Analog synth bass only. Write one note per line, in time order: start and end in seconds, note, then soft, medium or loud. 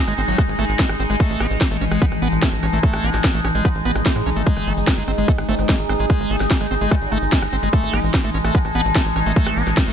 0.08 0.14 G#1 medium
0.18 0.24 G#1 loud
0.28 0.35 G#1 medium
0.49 0.55 G#1 medium
0.59 0.65 G#1 loud
0.69 0.76 G#1 medium
0.89 0.96 G#1 medium
1.00 1.06 G#1 loud
1.10 1.16 G#1 medium
1.30 1.37 A1 medium
1.40 1.47 A1 loud
1.51 1.57 A1 medium
1.71 1.78 A1 medium
1.81 1.88 A1 loud
1.91 1.98 A1 medium
2.12 2.18 A1 medium
2.22 2.29 A1 loud
2.32 2.39 A1 medium
2.53 2.59 A1 medium
2.63 2.69 A1 loud
2.73 2.80 A1 medium
2.94 3.00 A1 medium
3.04 3.10 A1 loud
3.14 3.20 A1 medium
3.34 3.41 A1 medium
3.45 3.51 A1 medium
3.55 3.61 A1 medium
3.75 3.82 A1 medium
3.85 3.92 A1 loud
3.96 4.02 A1 medium
4.16 4.22 A2 medium
4.26 4.33 B1 loud
4.36 4.43 A1 medium
4.57 4.63 G#1 medium
4.67 4.73 G#1 loud
4.77 4.84 G#1 loud
4.98 5.04 G#1 medium
5.08 5.14 G#1 loud
5.18 5.24 G#1 medium
5.38 5.45 G#1 medium
5.49 5.55 G#1 loud
5.59 5.65 G#1 medium
5.79 5.86 G#1 medium
5.89 5.96 G#1 loud
6.00 6.06 G#1 loud
6.20 6.27 G#1 medium
6.30 6.37 G#1 loud
6.40 6.47 G#1 medium
6.61 6.67 G#1 medium
6.71 6.78 G#1 loud
6.81 6.88 G#1 loud
7.02 7.08 G#1 medium
7.12 7.18 G#1 loud
7.22 7.29 G#1 medium
7.42 7.49 G#1 medium
7.53 7.59 G#1 loud
7.63 7.69 G#1 medium
7.83 7.90 A1 medium
7.94 8.00 A1 loud
8.04 8.10 A1 medium
8.24 8.31 A1 medium
8.34 8.41 A1 loud
8.45 8.51 A1 loud
8.65 8.71 A1 medium
8.75 8.82 A1 loud
8.85 8.92 A1 medium
9.06 9.12 A1 medium
9.16 9.22 A1 loud
9.26 9.33 A1 medium
9.47 9.53 A1 medium
9.57 9.63 A1 loud
9.67 9.73 A1 loud
9.87 9.93 A1 medium